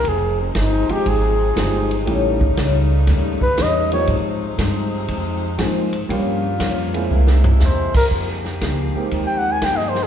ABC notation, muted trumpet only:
X:1
M:4/4
L:1/16
Q:"Swing" 1/4=119
K:Fm
V:1 name="Muted trumpet"
A2 C2 E2 G2 A8 | z8 z2 _c2 ^d2 ^c2 | z16 | z8 z2 A2 c2 B2 |
z8 z g _g a =g e c A |]